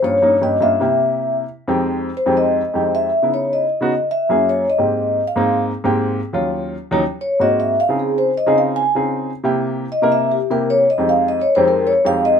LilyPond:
<<
  \new Staff \with { instrumentName = "Vibraphone" } { \time 4/4 \key f \minor \tempo 4 = 155 des''4 ees''8 e''2 r8 | r4. c''8 ees''4. e''8~ | e''8 des''8 ees''4. fes''4 des''8 | ees''4. f''4 r4. |
r2 r8 des''8 ees''8 e''8 | f''8 aes'8 c''8 ees''8 f''8 aes''8 r4 | r4. ees''8 e''8 g'8 bes'8 des''8 | ees''8 f''8 \tuplet 3/2 { ees''8 des''8 c''8 } bes'8 des''8 f''8 ees''8 | }
  \new Staff \with { instrumentName = "Grand piano" } { \time 4/4 \key f \minor <g, bes des' f'>16 r16 <g, bes des' ees'>16 r16 <g, bes des' g'>16 r16 <g, bes des' f'>8 <c bes e' g'>4. r8 | r16 <f, aes c' ees' g'>4 r8 <f, aes c' ees' g'>8. r8 <f, aes c' ees' g'>4 | r16 <des ces' ees' fes'>4 r8 <des ces' ees' ges'>16 r4 <ges, bes des' fes' aes'>4 | r16 <aes, bes c' g'>4 r8 <aes, bes c' ees'>8. r8 <aes, bes c' g'>4 |
r16 <ees, ges des' f'>4 r8 <ees, ges des' ees'>16 r4 <aes, bes c' ges'>4 | r16 <des c' ees' f' aes'>4 r8 <des c' ees' f' aes'>8. r8 <des c' ees' f' aes'>4 | r16 <c bes e' g'>4 r8 <c bes e' bes'>8. r8 <c bes e' g'>4 | r16 <f, aes c' ees' g'>4 r8 <f, aes c' ees' g'>8. r8 <f, aes c' ees' g'>4 | }
>>